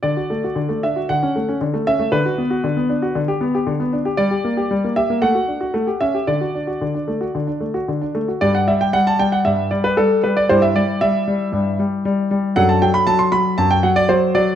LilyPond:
<<
  \new Staff \with { instrumentName = "Grand piano" } { \time 4/4 \key d \major \tempo 4 = 116 << { d''4. e''8 fis''4. e''8 | b'2.~ b'8 r8 | d''4. e''8 fis''4. e''8 | d''2.~ d''8 r8 |
\key c \lydian d''16 fis''16 e''16 g''16 fis''16 a''16 g''16 fis''16 e''8 d''16 b'16 a'8 b'16 d''16 | c''16 e''16 d''8 e''2~ e''8 r8 | fis''16 a''16 g''16 b''16 a''16 c'''16 b''8 a''16 g''16 fis''16 d''16 c''8 d''8 | } \\ { r1 | r1 | r1 | r1 |
g'1 | <e' g'>1 | <d' a'>1 | } >> }
  \new Staff \with { instrumentName = "Grand piano" } { \time 4/4 \key d \major d16 fis'16 a16 fis'16 d16 a16 d'16 fis'16 d16 cis'16 a16 cis'16 d16 a16 cis'16 a16 | d16 fis'16 b16 fis'16 d16 b16 d'16 fis'16 d16 g'16 b16 g'16 d16 b16 d'16 g'16 | g16 g'16 bes16 g'16 g16 bes16 g'16 bes16 a16 fis'16 d'16 fis'16 a16 g'16 cis'16 g'16 | d16 fis'16 d'16 fis'16 d16 d'16 a16 fis'16 d16 d'16 a16 fis'16 d16 d'16 a16 fis'16 |
\key c \lydian <g, g>8 g8 g8 g8 <g, g>8 g8 g8 g8 | <g, g>8 g8 g8 g8 <g, g>8 g8 g8 g8 | <fis, fis>8 fis8 fis8 fis8 <fis, fis>8 fis8 fis8 fis8 | }
>>